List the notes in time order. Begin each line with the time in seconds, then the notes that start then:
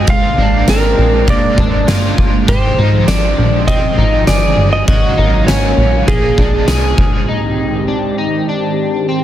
Already playing: G#3 D#5
0.07 G#1 G#3 A#3 C4 D4 F4 F5, kick, ride
0.36 G#1 D4 A#4
0.40 C4
0.68 G#1 C4 A#4, snare, ride, tambourine
0.98 A#1
1.25 G#3 A#3 C4 D4, kick, ride
1.30 A#4 D5
1.57 G#1 D4, kick
1.86 G1 G#3 C4 D4 F4, snare, ride, tambourine
1.91 A#4
2.18 G1, kick
2.47 G#1 G#2 D#3 F3 C4 F4 G4 C5, kick, ride
2.76 G#1 C4 D#4 F4 G4
2.80 F3
3.08 G#1 D4 D5, snare, ride, tambourine
3.38 A#1
3.66 F3 C4 F4 D#5, kick, ride
3.70 G4
3.98 G#1 D#4
4.25 G1 F3 C4 F4 G#4 D5, snare, ride, tambourine
4.30 G4
4.57 G1
4.73 D#5
4.85 G#1 G#2 C#3 F#3 A#3 F#4 D#5, kick, ride
4.89 C#4 F4 A#4 F5
5.17 G#1 D#4
5.47 G#1 C#4 C#5, snare, ride, tambourine
5.77 A#1
6.07 A#1 F3 G#3 A#3 D4 G#4, kick, ride
6.11 G#4
6.38 A#1 D4, kick
6.66 C2 F3 A#3 D4 G#4, snare, ride, tambourine
6.71 G#4
6.98 G1, kick
7.27 G#2 D#3 C4 D#4 G4
7.88 D4
8.18 D#4
8.49 D4
9.09 C4